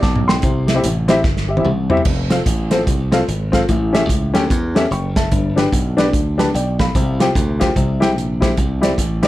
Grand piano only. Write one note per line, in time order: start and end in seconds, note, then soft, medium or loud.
0.02 0.27 A5 medium
0.02 0.27 D6 medium
0.28 0.67 G5 medium
0.28 0.66 C6 medium
0.43 1.05 C3 medium
0.67 0.72 G4 soft
0.67 0.73 E5 medium
0.74 0.83 C4 medium
0.74 0.84 E4 medium
0.74 0.84 G4 medium
0.74 0.84 E5 medium
1.08 1.17 C4 medium
1.08 1.17 E4 medium
1.08 1.17 G4 medium
1.08 1.18 E5 medium
1.49 1.53 G4 medium
1.49 1.54 E5 medium
1.56 1.65 C4 medium
1.56 1.65 E4 medium
1.56 1.66 G4 medium
1.56 1.66 E5 medium
1.90 1.98 C4 medium
1.90 1.98 E4 medium
1.90 1.99 G4 medium
1.90 1.99 E5 medium
2.30 2.39 C4 medium
2.30 2.39 F4 medium
2.30 2.39 A4 medium
2.30 2.39 F5 medium
2.71 2.79 C4 medium
2.71 2.80 F4 medium
2.71 2.80 A4 medium
2.71 2.80 C5 medium
3.12 3.20 C4 medium
3.12 3.20 F4 medium
3.12 3.21 A4 medium
3.12 3.21 F5 medium
3.52 3.61 C4 medium
3.52 3.61 F4 medium
3.52 3.61 A4 medium
3.52 3.62 F5 medium
3.68 4.31 A2 medium
3.93 4.01 C#4 medium
3.93 4.02 G4 medium
3.93 4.02 A4 medium
3.93 4.02 E5 medium
4.34 4.42 C#4 medium
4.34 4.43 G4 medium
4.34 4.43 A4 medium
4.34 4.43 G5 medium
4.75 4.83 C#4 medium
4.75 4.84 G4 medium
4.75 4.84 A4 medium
4.75 4.84 E5 medium
4.92 5.16 G5 soft
4.92 5.16 C#6 medium
5.16 5.55 E5 medium
5.16 5.55 A5 medium
5.32 5.94 G2 medium
5.56 5.65 D4 medium
5.56 5.65 G4 medium
5.56 5.65 B4 medium
5.56 5.66 G5 medium
5.97 6.05 D4 medium
5.97 6.06 G4 medium
5.97 6.06 B4 medium
5.97 6.06 D5 medium
6.38 6.46 D4 medium
6.38 6.46 G4 medium
6.38 6.47 B4 medium
6.38 6.47 A5 medium
6.55 6.79 D5 medium
6.55 6.79 G5 medium
6.80 7.19 F5 medium
6.80 7.18 B5 medium
6.95 7.57 C3 medium
7.20 7.28 F4 medium
7.20 7.28 G4 medium
7.20 7.29 C5 medium
7.20 7.29 G5 medium
7.60 7.68 F4 medium
7.60 7.68 G4 medium
7.60 7.69 C5 medium
7.60 7.69 G5 medium
7.76 8.38 C3 medium
8.00 8.09 E4 medium
8.00 8.09 G4 medium
8.00 8.09 C5 medium
8.00 8.10 G5 loud
8.41 8.49 E4 medium
8.41 8.50 G4 medium
8.41 8.50 C5 medium
8.41 8.50 E5 medium
8.81 8.90 E4 medium
8.81 8.90 G4 medium
8.81 8.91 C5 medium
8.81 8.91 D5 medium
9.23 9.28 E4 medium
9.23 9.28 G4 medium
9.23 9.28 C5 medium
9.23 9.28 D5 medium